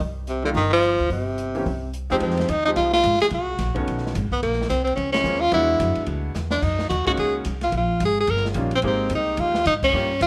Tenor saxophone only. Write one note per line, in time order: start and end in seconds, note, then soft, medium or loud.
0.29 0.44 C3 medium
0.45 0.50 D3 medium
0.56 0.71 D#3 medium
0.73 1.09 F3 loud
1.12 1.90 C3 medium
2.12 2.16 C4 medium
2.22 2.51 C4 medium
2.50 2.65 D#4 medium
2.65 2.70 D#4 medium
2.76 2.92 F4 medium
2.93 3.19 F4 loud
3.22 3.26 G#4 loud
3.34 3.84 F#4 medium
4.32 4.42 B3 medium
4.43 4.68 A#3 medium
4.69 4.84 C4 medium
4.84 4.95 C4 medium
4.96 5.12 C#4 medium
5.12 5.42 C#4 loud
5.40 5.52 F4 loud
5.53 6.05 E4 loud
6.51 6.64 D4 medium
6.63 6.89 D#4 medium
6.89 7.05 F#4 medium
7.07 7.12 F#4 loud
7.19 7.34 G#4 medium
7.64 7.73 F4 medium
7.78 8.01 F4 medium
8.05 8.19 G#4 loud
8.20 8.32 G#4 loud
8.31 8.46 A#4 medium
8.75 8.80 C4 medium
8.87 9.11 C4 medium
9.15 9.42 D#4 medium
9.40 9.66 F4 loud
9.67 9.74 D#4 loud
9.84 10.19 C#4 loud
10.22 10.27 F4 loud